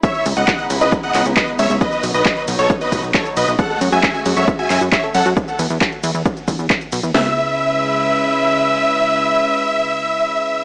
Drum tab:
RD |--x---x---x---x-|--x---x---x---x-|--x---x---x---x-|--x---x---x---x-|
HH |xxoxxxo-xxoxxxox|xxoxxxoxxxoxxxox|xxo-xxoxxxoxxxox|xxoxxxoxxxoxxxox|
SH |x-xxx-xxx-xxx-xx|xxxxx-xxxxxxxxxx|x-xxx-xxx-xxx-xx|xxxxx-xxxxxxxxxx|
CP |----x-----x-x---|----x-------x---|----x-----x-x---|----x-------x---|
SD |----------------|----------------|----------------|----------------|
BD |o---o---o---o---|o---o---o-o-o---|o---o---o---o---|o---o---o-o-o---|

RD |----------------|----------------|
HH |o---------------|----------------|
SH |----------------|----------------|
CP |----------------|----------------|
SD |o---------------|----------------|
BD |----------------|----------------|